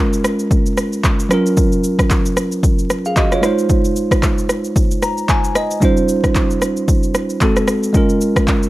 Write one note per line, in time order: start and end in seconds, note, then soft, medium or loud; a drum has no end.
0.00 1.26 G#3 medium
0.00 1.27 C#4 medium
0.00 1.28 F4 medium
0.00 1.28 A#4 medium
0.13 shaker medium
0.24 cross-stick loud
0.24 shaker medium
0.39 shaker medium
0.51 kick loud
0.51 shaker medium
0.66 shaker medium
0.77 cross-stick medium
0.77 shaker medium
0.93 shaker soft
1.04 kick loud
1.04 clap medium
1.04 shaker medium
1.20 shaker medium
1.29 2.60 F#3 medium
1.29 2.61 C#4 medium
1.29 2.61 F4 medium
1.29 cross-stick loud
1.29 shaker medium
1.33 2.62 A#4 medium
1.46 shaker medium
1.57 kick loud
1.57 shaker medium
1.72 shaker soft
1.84 shaker loud
1.99 kick medium
1.99 cross-stick loud
1.99 shaker medium
2.10 kick medium
2.10 clap medium
2.10 shaker medium
2.26 shaker medium
2.37 cross-stick medium
2.37 shaker medium
2.52 shaker medium
2.63 kick loud
2.63 shaker medium
2.79 shaker soft
2.90 cross-stick medium
2.90 shaker medium
3.05 3.17 G#4 medium
3.05 3.16 F5 medium
3.05 shaker soft
3.16 3.32 F#4 medium
3.16 3.31 D#5 medium
3.16 kick medium
3.16 clap medium
3.16 shaker medium
3.32 3.43 F4 medium
3.32 3.57 C#5 medium
3.32 cross-stick medium
3.32 shaker medium
3.41 5.51 G#3 medium
3.41 5.51 D#4 medium
3.41 5.52 F4 medium
3.41 cross-stick loud
3.41 shaker medium
3.46 5.53 C5 medium
3.59 shaker medium
3.70 kick loud
3.70 shaker medium
3.85 shaker soft
3.96 shaker medium
4.11 kick medium
4.11 cross-stick loud
4.11 shaker medium
4.23 kick medium
4.23 clap medium
4.23 shaker medium
4.38 shaker medium
4.49 cross-stick medium
4.49 shaker medium
4.64 shaker medium
4.76 kick loud
4.76 shaker medium
4.91 shaker medium
5.02 5.27 A#5 medium
5.02 cross-stick medium
5.02 shaker medium
5.18 shaker soft
5.29 5.54 G#5 medium
5.29 kick medium
5.29 clap medium
5.29 shaker medium
5.44 shaker medium
5.55 5.80 D#5 medium
5.55 cross-stick loud
5.55 shaker medium
5.71 shaker medium
5.81 7.37 G3 medium
5.81 7.38 C#4 medium
5.81 7.38 D#4 medium
5.81 7.39 F4 medium
5.81 kick loud
5.81 shaker medium
5.85 7.39 C5 medium
5.97 shaker soft
6.09 shaker loud
6.24 kick medium
6.24 cross-stick medium
6.24 shaker medium
6.35 kick medium
6.35 clap loud
6.35 shaker medium
6.51 shaker medium
6.62 cross-stick medium
6.62 shaker medium
6.77 shaker medium
6.88 kick loud
6.88 shaker medium
7.03 shaker medium
7.15 cross-stick medium
7.15 shaker medium
7.30 shaker soft
7.41 7.92 G#3 medium
7.41 7.94 C4 medium
7.41 7.95 F#4 medium
7.41 7.95 A4 medium
7.41 kick medium
7.41 clap medium
7.41 shaker medium
7.57 cross-stick medium
7.57 shaker medium
7.68 cross-stick loud
7.68 shaker medium
7.83 shaker medium
7.93 8.69 G#3 medium
7.93 8.69 C#4 medium
7.93 8.69 F4 medium
7.93 kick loud
7.93 shaker medium
7.97 8.69 A#4 medium
8.09 shaker soft
8.21 shaker medium
8.36 kick medium
8.36 cross-stick loud
8.36 shaker medium
8.48 kick medium
8.48 clap loud
8.48 shaker medium
8.63 shaker medium